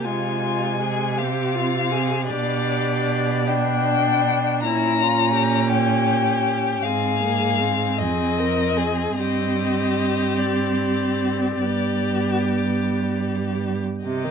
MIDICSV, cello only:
0, 0, Header, 1, 2, 480
1, 0, Start_track
1, 0, Tempo, 746269
1, 46, Time_signature, 12, 3, 24, 8
1, 1485, Tempo, 790514
1, 2445, Tempo, 742574
1, 4845, Tempo, 777202
1, 5325, Tempo, 808625
1, 8845, End_track
2, 0, Start_track
2, 0, Title_t, "Cello"
2, 0, Program_c, 0, 42
2, 44, Note_on_c, 0, 48, 42
2, 1475, Note_on_c, 0, 47, 49
2, 1485, Note_off_c, 0, 48, 0
2, 2924, Note_on_c, 0, 46, 47
2, 2934, Note_off_c, 0, 47, 0
2, 4348, Note_off_c, 0, 46, 0
2, 4351, Note_on_c, 0, 44, 49
2, 5089, Note_on_c, 0, 41, 39
2, 5098, Note_off_c, 0, 44, 0
2, 5799, Note_off_c, 0, 41, 0
2, 5803, Note_on_c, 0, 43, 39
2, 7223, Note_off_c, 0, 43, 0
2, 7247, Note_on_c, 0, 43, 44
2, 8552, Note_off_c, 0, 43, 0
2, 8692, Note_on_c, 0, 48, 42
2, 8845, Note_off_c, 0, 48, 0
2, 8845, End_track
0, 0, End_of_file